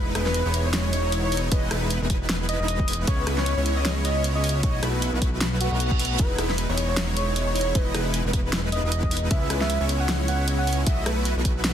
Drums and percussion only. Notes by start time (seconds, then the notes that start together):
0.15 cross-stick, closed hi-hat
0.26 snare
0.34 closed hi-hat
0.54 closed hi-hat
0.73 snare, closed hi-hat
0.93 closed hi-hat
1.12 closed hi-hat
1.32 open hi-hat
1.37 closed hi-hat
1.52 kick, closed hi-hat
1.71 cross-stick, closed hi-hat
1.91 closed hi-hat
2.10 kick, closed hi-hat
2.29 snare, closed hi-hat
2.49 closed hi-hat
2.68 closed hi-hat
2.80 kick
2.88 open hi-hat
2.93 closed hi-hat
3.07 kick, closed hi-hat
3.27 cross-stick, closed hi-hat
3.38 snare
3.46 closed hi-hat
3.66 closed hi-hat
3.85 snare, closed hi-hat
4.05 closed hi-hat
4.24 closed hi-hat
4.44 open hi-hat
4.49 closed hi-hat
4.63 kick, closed hi-hat
4.83 cross-stick, closed hi-hat
5.02 closed hi-hat
5.22 kick, closed hi-hat
5.41 snare, closed hi-hat
5.61 closed hi-hat
5.80 closed hi-hat
5.91 kick
5.99 open hi-hat
6.05 closed hi-hat
6.19 kick, closed hi-hat
6.38 cross-stick, closed hi-hat
6.50 snare
6.58 closed hi-hat
6.78 closed hi-hat
6.97 snare, closed hi-hat
7.17 closed hi-hat
7.36 closed hi-hat
7.55 open hi-hat
7.61 closed hi-hat
7.75 kick, closed hi-hat
7.95 cross-stick, closed hi-hat
8.14 closed hi-hat
8.33 kick, closed hi-hat
8.53 snare, closed hi-hat
8.72 closed hi-hat
8.92 closed hi-hat
9.03 kick
9.11 open hi-hat
9.17 closed hi-hat
9.31 kick, closed hi-hat
9.50 cross-stick, closed hi-hat
9.61 snare
9.70 closed hi-hat
9.89 closed hi-hat
10.09 snare, closed hi-hat
10.28 closed hi-hat
10.48 closed hi-hat
10.67 open hi-hat
10.73 closed hi-hat
10.87 kick, closed hi-hat
11.06 cross-stick, closed hi-hat
11.25 closed hi-hat
11.45 kick, closed hi-hat
11.64 snare, closed hi-hat